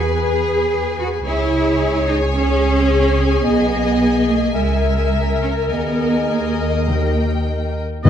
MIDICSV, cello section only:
0, 0, Header, 1, 2, 480
1, 0, Start_track
1, 0, Tempo, 547945
1, 1102, Time_signature, 4, 2, 24, 8
1, 3990, Tempo, 581395
1, 6914, End_track
2, 0, Start_track
2, 0, Title_t, "Cello section"
2, 0, Program_c, 0, 48
2, 151, Note_on_c, 0, 68, 74
2, 850, Note_off_c, 0, 68, 0
2, 869, Note_on_c, 0, 66, 83
2, 939, Note_off_c, 0, 66, 0
2, 1110, Note_on_c, 0, 64, 96
2, 1813, Note_off_c, 0, 64, 0
2, 1823, Note_on_c, 0, 63, 82
2, 1893, Note_off_c, 0, 63, 0
2, 2068, Note_on_c, 0, 61, 96
2, 3007, Note_off_c, 0, 61, 0
2, 3028, Note_on_c, 0, 59, 96
2, 3735, Note_off_c, 0, 59, 0
2, 3753, Note_on_c, 0, 58, 80
2, 3992, Note_off_c, 0, 58, 0
2, 3998, Note_on_c, 0, 56, 70
2, 4683, Note_off_c, 0, 56, 0
2, 4701, Note_on_c, 0, 61, 67
2, 4767, Note_off_c, 0, 61, 0
2, 4946, Note_on_c, 0, 59, 85
2, 5417, Note_off_c, 0, 59, 0
2, 5426, Note_on_c, 0, 58, 65
2, 6633, Note_off_c, 0, 58, 0
2, 6880, Note_on_c, 0, 44, 84
2, 6914, Note_off_c, 0, 44, 0
2, 6914, End_track
0, 0, End_of_file